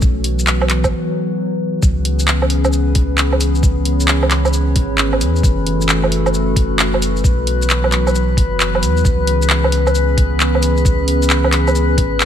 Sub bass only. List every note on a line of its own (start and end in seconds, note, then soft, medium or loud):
0.02 0.92 B1 loud
1.83 3.62 C#2 medium
3.63 4.77 C#2 loud
4.76 5.22 G#1 medium
5.21 5.42 E2 medium
5.44 7.23 F#1 loud
7.24 8.39 B1 medium
8.37 8.84 F#1 medium
8.82 9.03 E2 loud
9.05 10.84 C#2 loud
10.85 11.99 C#2 medium
11.98 12.25 G#1 medium